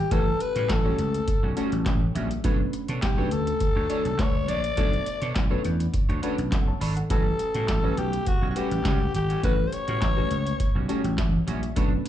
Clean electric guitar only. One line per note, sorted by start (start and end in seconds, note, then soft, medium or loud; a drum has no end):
0.11 0.27 G3 medium
0.11 0.26 C#4 medium
0.11 0.25 F#4 loud
0.26 muted clean electric guitar stroke soft
0.40 muted clean electric guitar stroke medium
0.56 0.68 G3 medium
0.56 0.67 C#4 medium
0.56 0.67 F#4 medium
0.69 muted clean electric guitar stroke soft
0.85 0.97 G3 medium
0.85 0.98 C#4 medium
0.85 0.98 F#4 medium
1.14 muted clean electric guitar stroke soft
1.28 muted clean electric guitar stroke soft
1.43 1.55 G3 soft
1.43 1.55 C#4 medium
1.43 1.54 F#4 medium
1.57 1.73 G3 loud
1.57 1.72 C#4 loud
1.57 1.71 F#4 loud
1.72 muted clean electric guitar stroke soft
2.01 muted clean electric guitar stroke soft
2.15 2.31 G3 medium
2.15 2.30 C#4 medium
2.15 2.29 F#4 medium
2.31 muted clean electric guitar stroke soft
2.44 2.60 D4 medium
2.44 2.59 A4 loud
2.44 2.59 C#5 loud
2.60 muted clean electric guitar stroke medium
2.73 muted clean electric guitar stroke soft
2.89 3.01 D4 medium
2.89 3.00 A4 medium
2.89 3.00 C#5 medium
3.02 muted clean electric guitar stroke soft
3.17 3.30 D4 medium
3.17 3.31 A4 medium
3.17 3.31 C#5 medium
3.31 muted clean electric guitar stroke soft
3.47 muted clean electric guitar stroke medium
3.61 muted clean electric guitar stroke soft
3.76 3.88 D4 medium
3.76 3.88 A4 medium
3.76 3.87 C#5 medium
3.90 4.06 D4 medium
3.90 4.05 A4 loud
3.90 4.04 C#5 loud
4.05 muted clean electric guitar stroke soft
4.34 muted clean electric guitar stroke soft
4.48 4.64 D4 medium
4.48 4.63 A4 medium
4.48 4.62 C#5 medium
4.63 muted clean electric guitar stroke soft
4.77 4.93 D4 medium
4.77 4.92 A4 loud
4.77 4.91 C#5 loud
4.92 muted clean electric guitar stroke soft
5.06 muted clean electric guitar stroke soft
5.21 5.34 D4 medium
5.21 5.33 A4 medium
5.21 5.33 C#5 medium
5.51 5.63 D4 medium
5.51 5.64 A4 medium
5.51 5.64 C#5 medium
5.64 muted clean electric guitar stroke soft
5.80 muted clean electric guitar stroke soft
5.93 muted clean electric guitar stroke soft
6.09 6.21 D4 medium
6.09 6.21 A4 medium
6.09 6.20 C#5 medium
6.22 6.39 D4 medium
6.22 6.38 A4 medium
6.22 6.37 C#5 loud
6.38 muted clean electric guitar stroke medium
6.67 muted clean electric guitar stroke medium
6.81 6.97 D4 medium
6.81 6.96 A4 medium
6.81 6.95 C#5 medium
6.96 muted clean electric guitar stroke soft
7.10 7.26 G3 medium
7.10 7.25 C#4 medium
7.10 7.24 F#4 loud
7.25 muted clean electric guitar stroke soft
7.39 muted clean electric guitar stroke soft
7.54 7.67 G3 medium
7.54 7.66 C#4 medium
7.54 7.66 F#4 medium
7.68 muted clean electric guitar stroke soft
7.83 7.96 G3 medium
7.83 7.96 C#4 medium
7.83 7.97 F#4 medium
8.13 muted clean electric guitar stroke soft
8.27 muted clean electric guitar stroke soft
8.42 8.54 G3 medium
8.42 8.54 C#4 medium
8.42 8.53 F#4 medium
8.56 8.72 G3 medium
8.56 8.71 C#4 medium
8.56 8.70 F#4 medium
8.71 muted clean electric guitar stroke medium
8.85 9.01 G3 medium
8.85 9.00 C#4 medium
8.85 8.99 F#4 medium
9.00 muted clean electric guitar stroke medium
9.14 muted clean electric guitar stroke soft
9.29 9.41 G3 medium
9.29 9.41 C#4 medium
9.29 9.41 F#4 medium
9.43 9.59 G3 medium
9.43 9.58 C#4 medium
9.43 9.57 F#4 loud
9.58 muted clean electric guitar stroke soft
9.72 muted clean electric guitar stroke soft
9.88 10.00 G3 medium
9.88 9.99 C#4 medium
9.88 9.99 F#4 medium
10.17 10.29 G3 medium
10.17 10.30 C#4 medium
10.17 10.30 F#4 medium
10.31 muted clean electric guitar stroke soft
10.46 muted clean electric guitar stroke soft
10.60 muted clean electric guitar stroke soft
10.75 10.87 G3 soft
10.75 10.87 C#4 medium
10.75 10.87 F#4 medium
10.88 11.05 G3 medium
10.88 11.04 C#4 medium
10.88 11.03 F#4 loud
11.04 muted clean electric guitar stroke soft
11.33 muted clean electric guitar stroke medium
11.47 11.63 G3 medium
11.47 11.62 C#4 medium
11.47 11.61 F#4 medium
11.62 muted clean electric guitar stroke soft
11.76 11.92 D4 loud
11.76 11.91 A4 loud
11.76 11.90 C#5 loud
11.92 muted clean electric guitar stroke soft
12.05 muted clean electric guitar stroke soft